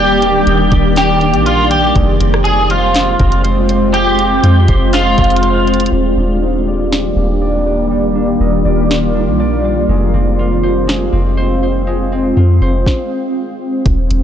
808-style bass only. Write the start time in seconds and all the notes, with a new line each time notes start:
Already playing: D#1
0.47 D#1
0.72 D#1
1.34 A#1
1.96 F1
2.21 F1
3.20 F1
4.44 F2
4.68 F1
5.18 F1
5.92 D#1
6.17 D#1
7.16 D#1
8.40 D#1
8.65 D#1
9.27 A#1
9.89 F1
10.14 F1
11.13 F1
12.37 F2
12.62 F1
13.86 D#1
14.10 D#1